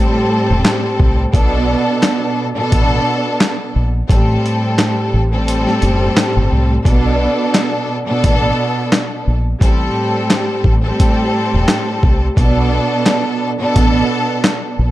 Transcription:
Already playing: string section A2 G3 C4 A4
0.50 fingered electric bass E1
0.65 snare, clap, closed hi-hat
1.00 fingered electric bass C2, kick
1.33 fingered electric bass B1, string section B2 B3 D4 A4, kick, closed hi-hat
2.03 snare, clap, closed hi-hat
2.56 string section B2 B3 D4 A4
2.72 fingered electric bass A1, kick, closed hi-hat
3.41 snare, clap, closed hi-hat
3.76 fingered electric bass A#1
4.09 fingered electric bass A1, string section A2 G3 C4 A4, kick, closed hi-hat
4.46 closed hi-hat
4.79 snare, clap, closed hi-hat
5.14 fingered electric bass A1
5.32 string section A2 G3 C4 A4
5.48 closed hi-hat
5.67 snare
5.82 fingered electric bass F#1, closed hi-hat
6.17 snare, clap, closed hi-hat
6.37 fingered electric bass G1
6.52 fingered electric bass C2
6.84 fingered electric bass B1, string section B2 B3 D4 A4, kick, closed hi-hat
7.54 snare, clap, closed hi-hat
8.07 string section B2 B3 D4 A4
8.24 fingered electric bass A1, kick, closed hi-hat
8.92 snare, clap, closed hi-hat
9.27 fingered electric bass A#1
9.60 fingered electric bass A1, string section A2 G3 C4 A4, kick, closed hi-hat
10.30 snare, clap, closed hi-hat
10.64 fingered electric bass A1, kick
10.83 string section A2 G3 C4 A4
11.00 kick, closed hi-hat
11.54 fingered electric bass E1
11.68 snare, clap, closed hi-hat
12.03 fingered electric bass C2, kick
12.36 fingered electric bass B1, string section B2 B3 D4 A4, kick, closed hi-hat
13.06 snare, clap, closed hi-hat
13.59 string section B2 B3 D4 A4
13.76 fingered electric bass A1, kick, closed hi-hat
14.44 snare, clap, closed hi-hat
14.79 fingered electric bass A#1

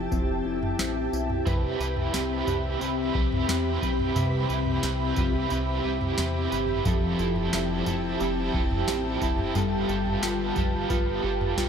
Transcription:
Already playing: clean electric guitar F3 C4 E4 A4, ambient pad G4 E5 G5 A5
0.11 analog synth bass F1, clean electric guitar C4, kick, tambourine
0.45 analog synth bass F1, clean electric guitar E4
0.63 floor tom
0.79 analog synth bass A1, clean electric guitar C4, snare, tambourine
1.13 analog synth bass B1, clean electric guitar E4, tambourine
1.30 floor tom
1.46 analog synth bass C2, overdriven electric guitar C4 E4 G4 B4, ambient pad C4 B5, kick, floor tom, tambourine
1.79 analog synth bass C2, overdriven electric guitar G4 B4, tambourine
1.83 overdriven electric guitar E4
1.97 floor tom
2.13 analog synth bass C2, overdriven electric guitar C4 E4 G4 B4, snare, tambourine
2.47 analog synth bass C2, overdriven electric guitar G4 B4, floor tom, tambourine
2.51 overdriven electric guitar E4
2.80 analog synth bass C2, overdriven electric guitar C4 E4 G4 B4, tambourine
3.14 analog synth bass C2, overdriven electric guitar E4 G4 B4, kick
3.32 floor tom
3.48 analog synth bass E2, overdriven electric guitar C4 E4 G4 B4, snare, tambourine
3.81 analog synth bass B1, overdriven electric guitar G4 B4, kick, tambourine
3.85 overdriven electric guitar E4
3.99 floor tom
4.15 analog synth bass C2, clean electric guitar C3, overdriven electric guitar C4 E4 G4 B4, floor tom, tambourine
4.49 analog synth bass C2, overdriven electric guitar E4 G4 B4, tambourine
4.66 floor tom
4.83 analog synth bass C2, overdriven electric guitar C4 E4 G4 B4, snare, tambourine
5.16 analog synth bass C2, clean electric guitar F4, overdriven electric guitar G4 B4, kick, floor tom, tambourine
5.20 overdriven electric guitar E4
5.34 clean electric guitar G4
5.50 analog synth bass C2, overdriven electric guitar C4 E4 G4, tambourine
5.54 overdriven electric guitar B4
5.83 analog synth bass C2, overdriven electric guitar E4 G4 B4
6.01 floor tom
6.18 analog synth bass E2, overdriven electric guitar C4 E4 G4 B4, snare, tambourine
6.51 analog synth bass G1, overdriven electric guitar E4 G4 B4, tambourine
6.69 floor tom
6.85 analog synth bass F1, overdriven electric guitar F3 G3 C4 E4 A4, ambient pad G5 A5, kick, floor tom, tambourine
7.19 analog synth bass F1, overdriven electric guitar E4 A4, tambourine
7.23 overdriven electric guitar C4
7.36 floor tom
7.53 analog synth bass F1, overdriven electric guitar F3 G3 C4 E4 A4, snare, tambourine
7.86 analog synth bass F1, overdriven electric guitar E4 A4, floor tom, tambourine
7.90 overdriven electric guitar C4
8.20 analog synth bass F1, overdriven electric guitar G3 C4 E4 A4, tambourine
8.53 analog synth bass F1, overdriven electric guitar C4 E4 A4, kick
8.71 floor tom
8.87 analog synth bass A1, overdriven electric guitar F3 G3 C4 E4 A4, snare, tambourine
9.20 analog synth bass F1, overdriven electric guitar E4 A4, kick, tambourine
9.24 overdriven electric guitar C4
9.38 floor tom
9.54 analog synth bass G1, overdriven electric guitar G3 B3 F4 G4 A4, ambient pad B4, floor tom, tambourine
9.88 analog synth bass G1, overdriven electric guitar F4 G4 A4, tambourine
10.06 floor tom
10.22 analog synth bass G1, overdriven electric guitar G3 B3 F4 G4 A4, snare, tambourine
10.55 analog synth bass G1, overdriven electric guitar G4 A4, kick, floor tom, tambourine
10.59 overdriven electric guitar F4
10.89 analog synth bass G1, overdriven electric guitar B3 F4 G4, kick, tambourine
10.93 overdriven electric guitar A4
11.23 analog synth bass G1, overdriven electric guitar F4 G4 A4
11.41 floor tom
11.57 analog synth bass B1, overdriven electric guitar G3 B3 F4 G4 A4, snare, tambourine

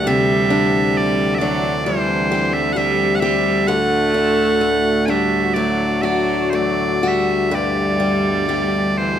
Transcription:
Already playing: bagpipes D2 D3, brass ensemble D3, steel-string acoustic guitar B3 D4 G4
0.03 steel-string acoustic guitar C3, brass ensemble E3 C4, viola G3
0.07 bagpipes E5
0.50 steel-string acoustic guitar D4
0.92 viola G3
0.97 bagpipes D5
1.35 bagpipes D5 E5
1.40 viola F#3, steel-string acoustic guitar D4
1.85 viola E3, steel-string acoustic guitar G3, bagpipes C5
2.32 steel-string acoustic guitar G4
2.53 viola G3, bagpipes E5
2.73 viola G3, steel-string acoustic guitar G3, bagpipes F#5
2.77 bagpipes E5
3.15 bagpipes F#5
3.20 viola G3, steel-string acoustic guitar G4, bagpipes E5
3.67 brass ensemble D2 A2 F#4, steel-string acoustic guitar D3, viola A3, bagpipes F#5
4.14 steel-string acoustic guitar D4
4.61 steel-string acoustic guitar A3
5.06 viola G3, steel-string acoustic guitar D4, bagpipes G#5
5.10 bagpipes E5
5.54 viola F#3, steel-string acoustic guitar A3, bagpipes D5
6.00 viola G3, steel-string acoustic guitar F#4, bagpipes D5 E5
6.04 viola F#3
6.50 viola E3 F#3, steel-string acoustic guitar A3, bagpipes C5
6.55 bagpipes D5
7.03 viola G3, steel-string acoustic guitar F#4
7.08 bagpipes E5
7.51 steel-string acoustic guitar G2 G4, brass ensemble G2 B2 E3, bagpipes D5
7.55 viola G3
8.00 steel-string acoustic guitar G3
8.49 steel-string acoustic guitar G4
8.97 viola E3, bagpipes C5

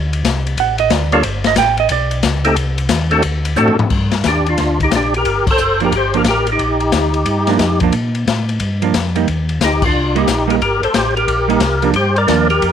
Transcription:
Already playing: tonewheel organ D2
0.13 ride
0.24 tonewheel organ C2, kick, snare, hi-hat pedal, ride
0.47 ride
0.57 tonewheel organ A1, hollow-body jazz guitar F#5, kick, ride
0.78 hollow-body jazz guitar D#5, ride
0.90 tonewheel organ D2, hollow-body jazz guitar D5, kick, snare, hi-hat pedal, ride
1.12 tonewheel organ G3 A#3 D4 F4 A4, hollow-body jazz guitar C#5, ride
1.23 tonewheel organ G1, hollow-body jazz guitar C5, kick, ride
1.44 hollow-body jazz guitar D#5, snare, ride
1.56 tonewheel organ A1, hollow-body jazz guitar G5, kick, snare, hi-hat pedal, ride
1.77 hollow-body jazz guitar D#5, ride
1.89 tonewheel organ B1, hollow-body jazz guitar D5, kick, ride
2.11 ride
2.23 tonewheel organ C#2, kick, snare, hi-hat pedal, ride
2.45 tonewheel organ A3 C4 D#4 G4 A4, ride
2.56 tonewheel organ C2, kick, ride
2.78 ride
2.89 tonewheel organ D#2, kick, snare, hi-hat pedal, ride
3.11 tonewheel organ A3 C4 D4 F#4 A4, ride
3.22 tonewheel organ D2, kick, ride
3.45 ride
3.56 tonewheel organ A2 A3 C4 D4 F#4 A4, floor tom, hi-hat pedal
3.68 floor tom
3.79 tonewheel organ A2, floor tom
3.90 tonewheel organ G2, kick, crash
4.11 snare, ride
4.24 tonewheel organ D#2 G4, kick, snare, hi-hat pedal, ride
4.28 tonewheel organ D4
4.46 tonewheel organ D4 F4, ride
4.58 tonewheel organ D2, kick, snare, ride
4.80 tonewheel organ D#4, kick, ride
4.84 tonewheel organ G4
4.91 tonewheel organ A#1, kick, snare, hi-hat pedal, ride
4.95 tonewheel organ D4 G4
5.14 tonewheel organ G4 A#4, ride
5.25 tonewheel organ G1, kick, ride
5.47 tonewheel organ G1, kick, crash
5.51 tonewheel organ A4 C5
5.58 tonewheel organ F#1, hi-hat pedal
5.80 hollow-body jazz guitar F3 A#3 D4, ride
5.85 tonewheel organ G4 A#4
5.92 tonewheel organ G1 G4, kick, ride
5.97 tonewheel organ C5
6.14 hollow-body jazz guitar F3 A#3 D4, tonewheel organ G4, ride
6.19 tonewheel organ A#4
6.24 tonewheel organ A1, kick, snare, hi-hat pedal, ride
6.28 tonewheel organ G4 A#4
6.47 ride
6.52 tonewheel organ D#4 G4
6.59 tonewheel organ A#1, kick, ride
6.80 ride
6.92 tonewheel organ D2, kick, snare, hi-hat pedal, ride
7.14 ride
7.26 tonewheel organ G2, kick, ride
7.47 hollow-body jazz guitar F3 A#3 D4, snare, ride
7.59 tonewheel organ F2, kick, snare, hi-hat pedal, ride
7.80 hollow-body jazz guitar F3 A#3 D4, kick, ride
7.92 tonewheel organ A#2, kick, ride
8.15 ride
8.27 tonewheel organ A2, kick, snare, hi-hat pedal, ride
8.49 ride
8.60 tonewheel organ G2, kick, ride
8.82 hollow-body jazz guitar F3 A#3 D4, ride
8.94 tonewheel organ F2, kick, snare, hi-hat pedal, ride
9.16 hollow-body jazz guitar G3 A#3 D#4, ride
9.27 tonewheel organ D#2, kick, ride
9.49 ride
9.61 tonewheel organ D2 G4, kick, snare, hi-hat pedal, ride
9.65 tonewheel organ D#4
9.82 tonewheel organ F4, kick, crash
9.87 tonewheel organ D4
9.93 tonewheel organ C2
10.15 hollow-body jazz guitar G3 A#3 D#4, tonewheel organ D#4 G4, ride
10.27 tonewheel organ A#1, kick, snare, hi-hat pedal, ride
10.47 hollow-body jazz guitar G3 A#3 D#4, tonewheel organ A#4, ride
10.52 tonewheel organ G4
10.61 tonewheel organ G1 G4 A#4, kick, ride
10.82 tonewheel organ G1 A4 C5, ride
10.94 tonewheel organ A1 G4 C5, kick, snare, hi-hat pedal, ride
11.17 tonewheel organ G4 A#4, ride
11.28 tonewheel organ A#1, kick, ride
11.48 hollow-body jazz guitar G3 A#3 D#4, ride
11.60 tonewheel organ C2, kick, snare, hi-hat pedal, ride
11.82 hollow-body jazz guitar F3 A#3 D4, ride
11.94 tonewheel organ G2 G4 C5, kick, ride
12.16 tonewheel organ A#4 D5, ride
12.27 tonewheel organ D#2, hollow-body jazz guitar F3 A#3 D4, kick, snare, hi-hat pedal, ride
12.50 tonewheel organ G4 A#4, ride
12.62 tonewheel organ F2, kick, ride

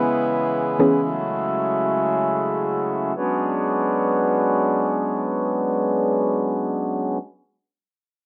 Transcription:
Already playing: harmonium C#3 E3 G#3 B3 E4
0.79 synth pluck E3 B3 C#4 G#4
1.06 harmonium F#3 A3
3.16 harmonium F#3 G#3 B3 C#4 D4

